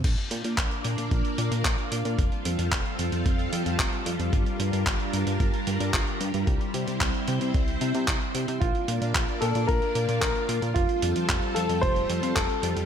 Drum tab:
CC |x---------------|----------------|----------------|----------------|
HH |xxxxxxxxxxxxxxxx|xxxxxxxxxxxxxxxx|xxxxxxxxxxxxxxxx|xxxxxxxxxxxxxxxx|
CP |----x-------x---|----x-------x---|----x-------x---|----x-------x---|
BD |o---o---o---o---|o---o---o---o---|o---o---o---o---|o---o---o---o---|

CC |----------------|----------------|
HH |xxxxxxxxxxxxxxxx|xxxxxxxxxxxxxxxx|
CP |----x-------x---|----x-------x---|
BD |o---o---o---o---|o---o---o---o---|